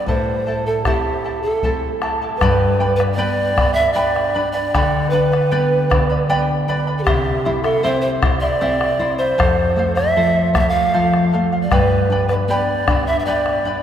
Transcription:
0.06 nylon-string guitar A2, charango E4 A4 C5 E5 A5, pan flute C5, bombo low
0.47 charango E4 A4 E5 A5
0.66 charango E4 A4 A5, pan flute A4
0.84 nylon-string guitar A3 C4 E4, charango E4 A4 C5 E5 A5, pan flute G4, bombo rim, bombo low
1.24 charango E4 A4 E5 A5, bombo rim
1.42 pan flute A4, charango A4 A5
1.47 charango E4
1.63 nylon-string guitar A3 C4 E4, charango E4 A4 C5 E5 A5, bombo rim, bombo low
1.83 bombo rim
2.02 charango E4 A4 E5 A5, bombo rim
2.22 charango E4 A4 A5
2.37 nylon-string guitar G2, pan flute B4
2.41 charango G4 B4 D5 G5 B5, bombo rim, bombo low
2.80 nylon-string guitar D4, charango B4 D5 G5 B5
2.96 pan flute B4, charango B5
3.00 charango B4 D5, bombo rim
3.14 nylon-string guitar B3, charango G4, pan flute D5
3.18 charango B4 D5 G5 B5
3.56 nylon-string guitar D4, charango B4 D5 G5 B5, bombo rim, bombo low
3.73 pan flute E5, charango B5
3.78 charango B4 D5
3.93 nylon-string guitar B3, charango G4 B4 D5 G5 B5, pan flute D5
4.16 bombo rim
4.34 nylon-string guitar D4, charango B4 D5 G5 B5
4.52 charango B4 D5 B5, pan flute D5
4.74 nylon-string guitar D3, charango G4 B4 D5 G5 B5, bombo rim, bombo low
5.10 nylon-string guitar D4, pan flute B4, charango B4 G5
5.14 charango D5 B5
5.32 charango B4 D5 B5, bombo rim
5.51 nylon-string guitar B3, charango G4 B4 D5 G5 B5
5.90 nylon-string guitar D4, charango B4 D5 G5 B5, bombo rim, bombo low
6.10 charango B4 D5 B5
6.29 nylon-string guitar B3, charango G4 B4 D5 G5 B5
6.68 nylon-string guitar D4, charango B4 D5 G5 B5
6.87 charango B4 D5 B5
6.99 pan flute A4
7.03 nylon-string guitar C3, charango E4 G4 C5 E5, pan flute G4, bombo rim, bombo low
7.07 charango C6
7.45 charango E4 C5 E5 C6, nylon-string guitar E4
7.63 charango E4 E5 C6, pan flute A4, bombo rim
7.83 nylon-string guitar C4, charango E4 G4 C5 E5 C6, pan flute C5
8.01 pan flute C5
8.22 charango E4 C5 E5 C6, nylon-string guitar E4, bombo rim, bombo low
8.40 charango E4 E5 C6, pan flute D5
8.61 nylon-string guitar C4, charango E4 G4 C5 E5 C6
8.81 bombo rim
8.99 nylon-string guitar E4, charango E4 C5 E5 C6
9.18 charango E4 E5 C6, pan flute C5
9.38 nylon-string guitar F2, charango A4 C5 F5, bombo rim, bombo low
9.76 nylon-string guitar A3, charango A4 C5 F5, bombo rim
9.95 charango C5 F5, pan flute E5, bombo rim
10.16 nylon-string guitar F3, charango A4 C5
10.54 nylon-string guitar A3, charango A4 C5 F5, pan flute F5, bombo rim, bombo low
10.59 pan flute E5
10.69 pan flute F5
10.75 charango C5 F5
10.94 nylon-string guitar F3, charango A4 C5 F5
11.14 bombo rim
11.33 nylon-string guitar A3, charango A4 C5 F5
11.52 charango C5 F5, bombo rim
11.63 pan flute D5
11.71 nylon-string guitar G2, charango G4 B4 D5 G5 B5, pan flute B4, bombo rim, bombo low
12.10 nylon-string guitar D4, charango B4 D5 G5 B5
12.28 pan flute B4, charango D5 B5, bombo rim
12.33 charango B4
12.48 nylon-string guitar B3, charango G4 B4 D5 G5 B5, pan flute D5
12.88 nylon-string guitar D4, charango B4 D5 G5 B5, bombo rim, bombo low
13.07 charango B4 D5 B5, pan flute E5
13.19 pan flute E5
13.25 nylon-string guitar B3, charango G4 B4 D5 G5 B5, pan flute D5
13.46 bombo rim
13.65 nylon-string guitar D4, charango B4 D5 G5 B5

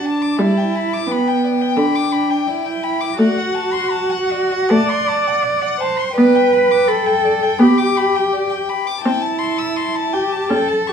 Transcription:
Already playing: violin A5
0.03 cello D4, violin A5
0.22 violin D6
0.38 viola G3, cello E4, violin D5
0.57 violin G5
0.76 violin B5
0.93 violin D6
1.07 cello B3, violin G5
1.12 violin B5
1.28 violin G5
1.44 violin D5
1.62 violin G5
1.76 viola D3, cello D4, violin B5
1.96 violin D6
2.12 violin B5
2.30 violin G5
2.47 cello E4, violin D5
2.66 violin G5
2.84 violin B5
3.01 violin D6
3.18 viola A3, cello F#4, violin D5 F#5
3.38 violin F#5
3.55 violin A5
3.73 violin C6
3.92 violin A5
4.10 violin F#5
4.32 violin D5
4.52 violin F#5
4.71 viola A3, cello D5, violin A5
4.90 violin C6
5.09 violin A5
5.28 violin F#5
5.44 violin D5
5.62 violin F#5
5.81 cello C5, violin A5
5.99 violin C6
6.16 viola B3, cello B4, violin D5 G5
6.36 violin G5
6.53 violin B5
6.72 violin D6
6.87 cello A4, violin B5
7.07 violin G5
7.25 violin D5
7.43 violin G5
7.59 viola B3, cello G4, violin B5
7.78 violin D6
7.97 violin B5
8.16 violin G5
8.33 violin D5
8.50 violin G5
8.69 violin B5
8.87 violin D6
9.04 viola C4, cello E4, violin G5 A5
9.22 violin A5
9.39 violin C6
9.59 violin E6
9.77 violin C6
9.96 violin A5
10.13 cello G4, violin G5
10.33 violin A5
10.49 viola C#4, cello A4, violin G5
10.68 violin A5
10.87 cello G4, violin C#6

